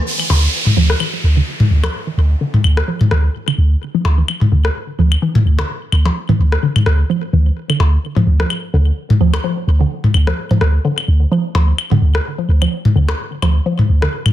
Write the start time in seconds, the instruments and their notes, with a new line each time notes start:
0.07 downlifter
0.20 claves
0.30 sub bass D2, synth arpeggio sound D3, percussion blips
0.66 mid tom
0.77 sub bass D2, synth arpeggio sound F3
0.90 cross-stick
1.00 synth arpeggio sound E3, claves
1.24 sub bass D2
1.37 synth arpeggio sound D3
1.60 mid tom
1.71 sub bass D2
1.84 synth arpeggio sound F3, cross-stick, claves, percussion blips
2.07 synth arpeggio sound E3
2.17 sub bass D2
2.41 synth arpeggio sound D3
2.54 mid tom
2.64 sub bass D2, claves
2.77 cross-stick
2.88 synth arpeggio sound F3
3.01 mid tom
3.11 sub bass D2, synth arpeggio sound E3, cross-stick
3.48 synth arpeggio sound D3, claves
3.58 sub bass D2
3.95 synth arpeggio sound F3
4.05 sub bass D2, percussion blips
4.18 synth arpeggio sound E3
4.28 claves
4.41 mid tom
4.52 sub bass D2, synth arpeggio sound D3
4.65 cross-stick
4.99 sub bass D2, synth arpeggio sound F3
5.12 claves
5.22 synth arpeggio sound E3
5.35 mid tom
5.46 sub bass D2
5.59 synth arpeggio sound D3, cross-stick, percussion blips
5.92 sub bass D2, claves
6.05 synth arpeggio sound F3, percussion blips
6.29 synth arpeggio sound E3, mid tom
6.39 sub bass D2
6.52 cross-stick
6.63 synth arpeggio sound D3
6.76 mid tom, claves
6.86 sub bass D2, cross-stick
7.10 synth arpeggio sound F3
7.33 sub bass D2, synth arpeggio sound E3
7.70 synth arpeggio sound D3, claves
7.80 sub bass D2, percussion blips
8.16 synth arpeggio sound F3, mid tom
8.27 sub bass D2
8.40 synth arpeggio sound F3, cross-stick
8.50 claves
8.74 sub bass D2, synth arpeggio sound D3
9.10 mid tom
9.21 sub bass D2, synth arpeggio sound F3
9.34 cross-stick, claves, percussion blips
9.44 synth arpeggio sound F3
9.68 sub bass D2
9.81 synth arpeggio sound D3
10.04 mid tom
10.14 sub bass D2, claves
10.27 synth arpeggio sound F3, cross-stick
10.51 synth arpeggio sound F3, mid tom
10.61 sub bass D2, cross-stick
10.85 synth arpeggio sound D3
10.98 claves
11.08 sub bass D2
11.32 synth arpeggio sound F3
11.55 sub bass D2, synth arpeggio sound F3, percussion blips
11.78 claves
11.91 synth arpeggio sound D3, mid tom
12.02 sub bass D2
12.15 cross-stick
12.38 synth arpeggio sound F3
12.49 sub bass D2
12.62 synth arpeggio sound F3, claves
12.85 mid tom
12.96 sub bass D2, synth arpeggio sound D3
13.09 cross-stick, percussion blips
13.42 sub bass D2, synth arpeggio sound F3, claves, percussion blips
13.66 synth arpeggio sound F3
13.79 mid tom
13.89 sub bass D2
14.02 synth arpeggio sound D3, cross-stick
14.26 mid tom, claves